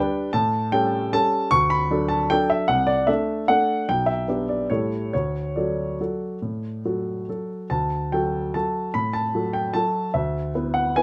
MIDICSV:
0, 0, Header, 1, 2, 480
1, 0, Start_track
1, 0, Key_signature, 2, "major"
1, 0, Tempo, 385852
1, 419, Time_signature, 3, 2, 24, 8
1, 2358, Tempo, 396040
1, 5238, Tempo, 426743
1, 10038, Tempo, 400000
1, 13022, End_track
2, 0, Start_track
2, 0, Title_t, "Grand piano"
2, 0, Program_c, 0, 0
2, 0, Note_on_c, 0, 55, 46
2, 0, Note_on_c, 0, 62, 48
2, 0, Note_on_c, 0, 71, 51
2, 0, Note_on_c, 0, 79, 94
2, 375, Note_off_c, 0, 55, 0
2, 376, Note_off_c, 0, 62, 0
2, 384, Note_off_c, 0, 71, 0
2, 410, Note_on_c, 0, 81, 88
2, 413, Note_off_c, 0, 79, 0
2, 421, Note_on_c, 0, 45, 59
2, 619, Control_c, 0, 64, 127
2, 883, Note_off_c, 0, 45, 0
2, 891, Note_off_c, 0, 81, 0
2, 899, Note_on_c, 0, 79, 87
2, 904, Note_on_c, 0, 55, 47
2, 904, Note_on_c, 0, 61, 42
2, 923, Note_on_c, 0, 69, 48
2, 1351, Note_off_c, 0, 55, 0
2, 1351, Note_off_c, 0, 61, 0
2, 1361, Note_off_c, 0, 69, 0
2, 1398, Note_off_c, 0, 79, 0
2, 1406, Note_on_c, 0, 55, 45
2, 1407, Note_on_c, 0, 81, 93
2, 1410, Control_c, 0, 64, 0
2, 1416, Note_on_c, 0, 69, 53
2, 1418, Note_on_c, 0, 61, 45
2, 1831, Note_off_c, 0, 55, 0
2, 1836, Note_off_c, 0, 69, 0
2, 1837, Note_off_c, 0, 61, 0
2, 1876, Note_on_c, 0, 85, 103
2, 1879, Note_off_c, 0, 81, 0
2, 1884, Note_on_c, 0, 38, 55
2, 2113, Note_off_c, 0, 85, 0
2, 2116, Note_on_c, 0, 83, 81
2, 2118, Control_c, 0, 64, 127
2, 2348, Note_off_c, 0, 38, 0
2, 2369, Note_on_c, 0, 54, 42
2, 2377, Note_on_c, 0, 62, 41
2, 2389, Note_on_c, 0, 69, 43
2, 2588, Note_on_c, 0, 81, 77
2, 2604, Note_off_c, 0, 83, 0
2, 2806, Note_off_c, 0, 54, 0
2, 2811, Note_off_c, 0, 62, 0
2, 2817, Note_off_c, 0, 69, 0
2, 2842, Note_off_c, 0, 81, 0
2, 2847, Note_on_c, 0, 79, 92
2, 2852, Note_on_c, 0, 54, 42
2, 2856, Note_on_c, 0, 62, 44
2, 2863, Note_on_c, 0, 69, 50
2, 2864, Control_c, 0, 64, 0
2, 3086, Note_on_c, 0, 76, 75
2, 3090, Note_off_c, 0, 79, 0
2, 3276, Note_off_c, 0, 54, 0
2, 3278, Note_off_c, 0, 62, 0
2, 3282, Note_off_c, 0, 69, 0
2, 3307, Note_on_c, 0, 78, 80
2, 3317, Note_on_c, 0, 36, 53
2, 3319, Note_off_c, 0, 76, 0
2, 3535, Note_on_c, 0, 74, 82
2, 3539, Control_c, 0, 64, 127
2, 3545, Note_off_c, 0, 78, 0
2, 3777, Note_off_c, 0, 36, 0
2, 3780, Note_on_c, 0, 76, 73
2, 3785, Note_off_c, 0, 74, 0
2, 3792, Note_on_c, 0, 57, 40
2, 3797, Note_on_c, 0, 69, 39
2, 3801, Note_on_c, 0, 62, 39
2, 3811, Control_c, 0, 64, 0
2, 4237, Note_off_c, 0, 57, 0
2, 4240, Note_off_c, 0, 69, 0
2, 4242, Note_off_c, 0, 62, 0
2, 4280, Note_off_c, 0, 76, 0
2, 4281, Note_on_c, 0, 78, 83
2, 4293, Note_on_c, 0, 62, 39
2, 4295, Note_on_c, 0, 57, 39
2, 4305, Note_on_c, 0, 69, 39
2, 4718, Note_off_c, 0, 62, 0
2, 4719, Note_off_c, 0, 57, 0
2, 4725, Note_off_c, 0, 69, 0
2, 4760, Note_off_c, 0, 78, 0
2, 4773, Note_on_c, 0, 79, 80
2, 4775, Note_on_c, 0, 35, 43
2, 4985, Note_on_c, 0, 76, 67
2, 4999, Control_c, 0, 64, 127
2, 5002, Note_off_c, 0, 79, 0
2, 5231, Note_off_c, 0, 35, 0
2, 5248, Note_on_c, 0, 59, 34
2, 5256, Note_on_c, 0, 62, 33
2, 5261, Note_on_c, 0, 67, 39
2, 5464, Note_off_c, 0, 76, 0
2, 5484, Note_on_c, 0, 74, 47
2, 5667, Note_off_c, 0, 59, 0
2, 5671, Note_off_c, 0, 62, 0
2, 5673, Note_off_c, 0, 67, 0
2, 5715, Note_off_c, 0, 74, 0
2, 5716, Note_on_c, 0, 73, 62
2, 5719, Control_c, 0, 64, 0
2, 5727, Note_on_c, 0, 45, 43
2, 5733, Note_on_c, 0, 55, 34
2, 5734, Note_on_c, 0, 64, 35
2, 5740, Note_on_c, 0, 69, 31
2, 5938, Control_c, 0, 64, 127
2, 6160, Note_off_c, 0, 55, 0
2, 6161, Note_off_c, 0, 64, 0
2, 6164, Note_off_c, 0, 69, 0
2, 6188, Note_off_c, 0, 45, 0
2, 6191, Note_off_c, 0, 73, 0
2, 6208, Note_on_c, 0, 73, 63
2, 6211, Control_c, 0, 64, 0
2, 6218, Note_on_c, 0, 38, 39
2, 6433, Control_c, 0, 64, 127
2, 6678, Note_off_c, 0, 38, 0
2, 6686, Note_on_c, 0, 74, 46
2, 6687, Note_off_c, 0, 73, 0
2, 6697, Note_on_c, 0, 54, 27
2, 6701, Note_on_c, 0, 66, 30
2, 6702, Note_on_c, 0, 69, 33
2, 7126, Note_off_c, 0, 54, 0
2, 7128, Note_off_c, 0, 66, 0
2, 7129, Note_off_c, 0, 69, 0
2, 7181, Control_c, 0, 64, 0
2, 7188, Note_on_c, 0, 54, 29
2, 7191, Note_on_c, 0, 66, 31
2, 7195, Note_on_c, 0, 69, 31
2, 7607, Note_off_c, 0, 54, 0
2, 7609, Note_off_c, 0, 66, 0
2, 7611, Note_off_c, 0, 69, 0
2, 7655, Note_on_c, 0, 45, 37
2, 7870, Control_c, 0, 64, 127
2, 8116, Note_off_c, 0, 45, 0
2, 8142, Note_on_c, 0, 54, 28
2, 8144, Note_on_c, 0, 66, 28
2, 8144, Note_on_c, 0, 69, 32
2, 8580, Note_off_c, 0, 54, 0
2, 8581, Note_off_c, 0, 66, 0
2, 8581, Note_off_c, 0, 69, 0
2, 8625, Control_c, 0, 64, 0
2, 8632, Note_on_c, 0, 54, 29
2, 8633, Note_on_c, 0, 66, 28
2, 8637, Note_on_c, 0, 69, 34
2, 8865, Note_off_c, 0, 74, 0
2, 9061, Note_off_c, 0, 54, 0
2, 9061, Note_off_c, 0, 66, 0
2, 9064, Note_off_c, 0, 69, 0
2, 9093, Note_on_c, 0, 81, 71
2, 9102, Note_on_c, 0, 38, 46
2, 9288, Control_c, 0, 64, 127
2, 9553, Note_off_c, 0, 38, 0
2, 9563, Note_off_c, 0, 81, 0
2, 9571, Note_on_c, 0, 79, 65
2, 9580, Note_on_c, 0, 54, 35
2, 9588, Note_on_c, 0, 66, 33
2, 9591, Note_on_c, 0, 69, 37
2, 10001, Note_off_c, 0, 54, 0
2, 10005, Note_off_c, 0, 66, 0
2, 10007, Note_off_c, 0, 69, 0
2, 10041, Note_off_c, 0, 79, 0
2, 10042, Note_on_c, 0, 81, 68
2, 10054, Note_on_c, 0, 54, 34
2, 10055, Note_on_c, 0, 66, 37
2, 10058, Control_c, 0, 64, 0
2, 10062, Note_on_c, 0, 69, 41
2, 10478, Note_off_c, 0, 54, 0
2, 10478, Note_off_c, 0, 66, 0
2, 10482, Note_off_c, 0, 69, 0
2, 10518, Note_on_c, 0, 83, 75
2, 10519, Note_off_c, 0, 81, 0
2, 10528, Note_on_c, 0, 45, 41
2, 10714, Control_c, 0, 64, 127
2, 10752, Note_off_c, 0, 83, 0
2, 10752, Note_on_c, 0, 81, 71
2, 10982, Note_off_c, 0, 45, 0
2, 11007, Note_on_c, 0, 54, 33
2, 11009, Note_on_c, 0, 66, 35
2, 11023, Note_on_c, 0, 69, 37
2, 11232, Note_off_c, 0, 81, 0
2, 11232, Note_on_c, 0, 79, 66
2, 11435, Note_off_c, 0, 54, 0
2, 11437, Note_off_c, 0, 66, 0
2, 11444, Note_off_c, 0, 69, 0
2, 11473, Note_on_c, 0, 81, 79
2, 11475, Note_off_c, 0, 79, 0
2, 11487, Note_on_c, 0, 54, 35
2, 11491, Control_c, 0, 64, 0
2, 11497, Note_on_c, 0, 69, 38
2, 11500, Note_on_c, 0, 66, 39
2, 11908, Note_off_c, 0, 54, 0
2, 11914, Note_off_c, 0, 69, 0
2, 11915, Note_off_c, 0, 66, 0
2, 11948, Note_off_c, 0, 81, 0
2, 11957, Note_on_c, 0, 76, 65
2, 11962, Note_on_c, 0, 38, 47
2, 12215, Control_c, 0, 64, 127
2, 12416, Note_off_c, 0, 38, 0
2, 12450, Note_on_c, 0, 59, 36
2, 12450, Note_on_c, 0, 64, 36
2, 12453, Note_on_c, 0, 71, 38
2, 12669, Note_off_c, 0, 76, 0
2, 12676, Note_on_c, 0, 78, 68
2, 12880, Note_off_c, 0, 59, 0
2, 12880, Note_off_c, 0, 64, 0
2, 12882, Note_off_c, 0, 71, 0
2, 12920, Note_off_c, 0, 78, 0
2, 12927, Control_c, 0, 64, 0
2, 12945, Note_on_c, 0, 80, 79
2, 12948, Note_on_c, 0, 59, 37
2, 12956, Note_on_c, 0, 64, 37
2, 12962, Note_on_c, 0, 71, 39
2, 13022, Note_off_c, 0, 59, 0
2, 13022, Note_off_c, 0, 64, 0
2, 13022, Note_off_c, 0, 71, 0
2, 13022, Note_off_c, 0, 80, 0
2, 13022, End_track
0, 0, End_of_file